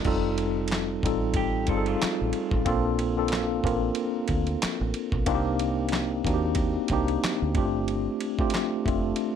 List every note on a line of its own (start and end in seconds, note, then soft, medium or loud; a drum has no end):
0.05 0.99 F1 loud
0.05 0.91 G3 loud
0.05 0.91 C4 loud
0.05 0.91 D#4 loud
0.05 0.92 F4 loud
0.05 0.92 A4 loud
0.05 kick loud
0.05 crash medium
0.38 ride medium
0.68 ride medium
0.72 snare loud
0.72 clap medium
1.03 1.71 A1 loud
1.03 1.60 G3 medium
1.03 1.61 C4 medium
1.03 1.61 D#4 medium
1.03 1.61 F4 medium
1.03 1.62 A4 medium
1.03 kick medium
1.03 ride medium
1.34 1.67 G4 medium
1.34 kick medium
1.34 ride medium
1.67 1.94 G1 loud
1.67 2.54 G3 loud
1.67 2.54 C4 medium
1.67 1.86 C4 medium
1.67 2.55 D#4 medium
1.67 2.55 F4 medium
1.67 1.86 A4 medium
1.67 kick medium
1.67 ride medium
1.71 1.76 G#4 medium
1.77 2.58 A4 loud
1.86 2.62 A3 medium
1.86 2.62 F4 medium
1.86 ride soft
2.02 muted fingered electric bass stroke medium
2.02 snare loud
2.02 clap loud
2.02 ride medium
2.21 2.31 A1 medium
2.33 ride medium
2.51 2.63 A1 medium
2.51 kick loud
2.65 3.60 A#1 loud
2.65 3.09 A#3 loud
2.65 3.09 C4 loud
2.65 3.09 D4 loud
2.65 3.09 F4 loud
2.65 3.10 A4 loud
2.65 kick loud
2.65 ride medium
2.99 ride medium
3.17 3.58 A#3 medium
3.17 3.58 C4 medium
3.17 3.58 D4 medium
3.17 3.58 F4 medium
3.17 3.59 A4 loud
3.28 ride medium
3.33 snare loud
3.33 clap medium
3.64 3.90 A1 loud
3.64 4.78 A#3 medium
3.64 4.78 C4 medium
3.64 4.78 D4 medium
3.64 4.78 F4 medium
3.64 4.79 A#4 medium
3.64 kick medium
3.64 ride medium
3.95 ride medium
4.28 4.55 D2 loud
4.28 kick medium
4.28 ride medium
4.47 ride soft
4.62 muted fingered electric bass stroke soft
4.62 snare loud
4.62 clap loud
4.62 ride medium
4.81 4.92 A1 loud
4.94 ride medium
5.12 5.24 B1 loud
5.12 kick loud
5.26 6.21 C2 loud
5.26 6.12 A#3 loud
5.26 6.12 C4 loud
5.26 6.13 D4 loud
5.26 6.13 D#4 loud
5.26 5.35 F4 loud
5.26 kick loud
5.26 ride medium
5.35 6.16 G4 loud
5.59 ride medium
5.89 ride medium
5.93 snare loud
5.93 clap medium
6.25 6.76 D#2 medium
6.25 6.82 A#3 medium
6.25 6.82 C4 medium
6.25 6.82 D4 medium
6.25 6.82 D#4 medium
6.25 6.33 F#4 medium
6.25 kick medium
6.25 ride medium
6.34 6.86 G4 loud
6.55 kick medium
6.55 ride medium
6.88 7.16 C2 loud
6.88 7.55 A#3 medium
6.88 7.55 C4 medium
6.88 7.55 D4 medium
6.88 kick medium
6.88 ride medium
6.93 7.56 D#4 medium
6.93 7.56 G4 loud
7.08 ride soft
7.24 muted fingered electric bass stroke soft
7.24 snare loud
7.24 clap loud
7.24 ride medium
7.42 7.58 D2 medium
7.55 8.07 G1 loud
7.55 8.26 A3 loud
7.55 8.26 C4 medium
7.55 8.26 D4 medium
7.55 8.27 F4 medium
7.55 8.27 G4 loud
7.55 kick loud
7.55 ride medium
7.88 ride medium
8.21 ride medium
8.39 8.79 A3 medium
8.39 8.80 C4 medium
8.39 8.80 D4 medium
8.39 8.80 F4 medium
8.39 8.80 G4 loud
8.39 kick loud
8.50 ride medium
8.54 snare loud
8.54 clap medium
8.86 9.12 F1 medium
8.86 9.36 A3 medium
8.86 9.36 C4 medium
8.86 9.36 D4 medium
8.86 9.36 F4 medium
8.86 9.36 A4 medium
8.86 kick loud
8.86 ride medium
9.16 ride medium